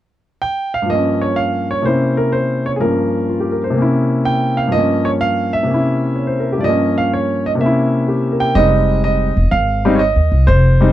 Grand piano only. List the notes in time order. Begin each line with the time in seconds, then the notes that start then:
0.42 G5
0.74 F5
0.82 G2 F3
0.90 A#3 C#4 D#5
1.21 C#5
1.36 F5
1.71 C#5
1.82 C3 A#3 C#4 C5
1.87 E4
2.17 A#4
2.32 C5
2.66 C#5
2.76 G2 G#4
2.80 F3 A#3 C#4 A#4
3.29 F4
3.40 G4
3.52 A#4
3.64 C5
3.70 C3 A#3
3.78 C#4 E4
4.25 G5
4.57 F5
4.67 G2 F3
4.72 A#3 D#5
4.78 C#4
5.05 C#5
5.21 F5
5.53 E5
5.63 C3 A#3
5.71 C#4 E4
6.16 C#5
6.27 C5
6.40 A#4
6.52 G4
6.58 G2 D5
6.62 F3 A#3 D#5
6.69 C#4
6.98 F5
7.13 C#5
7.46 D#5
7.55 C3 A#3
7.61 C#4 E5
7.66 E4
8.08 G4
8.32 A#4
8.40 G5
8.55 G3 G#3 C4 D#4 D#5
9.04 D#5
9.51 F5
9.85 G3 G#3 C4 D#4
9.95 C#5 D#5
10.47 C5
10.81 G3 G#3 C4 D#4